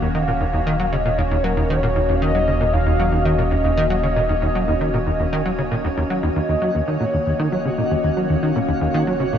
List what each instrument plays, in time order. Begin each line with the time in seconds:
Already playing: analog synth bass D#1, ambient pad D#3 A#3 C#4 F#4 C#5, soft synth lead F5
0.02 analog synth bass D#2
0.15 analog synth bass D#3
0.28 analog synth bass A#2
0.41 analog synth bass D#2
0.54 analog synth bass D#2
0.67 analog synth bass D#3
0.80 analog synth bass F#3
0.92 analog synth bass C#3, soft synth lead D#5
1.05 analog synth bass A#2
1.18 analog synth bass D#2, soft synth lead C#5
1.31 analog synth bass D#2
1.44 analog synth bass F#3, soft synth lead A#4
1.57 analog synth bass D#2
1.70 analog synth bass D#3, soft synth lead C#5
1.83 analog synth bass A#2
1.96 analog synth bass D#2
2.09 analog synth bass D#2
2.15 soft synth lead F5
2.22 analog synth bass D#3, soft synth lead D#5
2.35 analog synth bass F#3
2.48 analog synth bass C#3
2.61 analog synth bass A#2
2.73 analog synth bass D#2, soft synth lead F5
2.86 analog synth bass D#2
3.00 analog synth bass F#3
3.12 analog synth bass D#2
3.25 analog synth bass D#3, soft synth lead D#5
3.39 analog synth bass A#2
3.51 analog synth bass D#2
3.64 analog synth bass D#2
3.77 analog synth bass D#3
3.90 analog synth bass F#3
4.03 analog synth bass C#3
4.16 analog synth bass A#2
4.29 analog synth bass D#2
4.42 analog synth bass D#2
4.55 analog synth bass F#3
4.68 analog synth bass D#2
4.81 analog synth bass D#3
4.94 analog synth bass A#2
5.07 analog synth bass D#2
5.20 analog synth bass D#2
5.33 analog synth bass D#3
5.46 analog synth bass F#3
5.59 analog synth bass C#3
5.71 analog synth bass A#2
5.85 analog synth bass D#2
5.97 analog synth bass D#2
6.10 analog synth bass F#3
6.23 analog synth bass D#2
6.36 analog synth bass D#1 D#2, ambient pad D#3 A#3, synth texture F#4, soft synth lead D#5
6.49 analog synth bass D#2, ambient pad C#4
6.62 analog synth bass F#3
6.75 analog synth bass D#2
6.84 analog synth bass D#3, ambient pad F#4, soft synth lead C#5
7.00 analog synth bass A#2
7.14 analog synth bass D#2
7.27 analog synth bass D#2
7.39 analog synth bass D#3, soft synth lead D#5
7.52 analog synth bass F#3
7.65 analog synth bass C#3
7.78 analog synth bass A#2
7.91 analog synth bass D#2
8.04 analog synth bass D#2
8.17 analog synth bass F#3
8.30 analog synth bass D#2
8.36 soft synth lead F#5
8.43 analog synth bass D#3, soft synth lead F5
8.56 analog synth bass A#2
8.69 analog synth bass D#2
8.81 analog synth bass D#2
8.94 analog synth bass D#3
9.07 analog synth bass F#3
9.20 analog synth bass C#3
9.33 analog synth bass A#2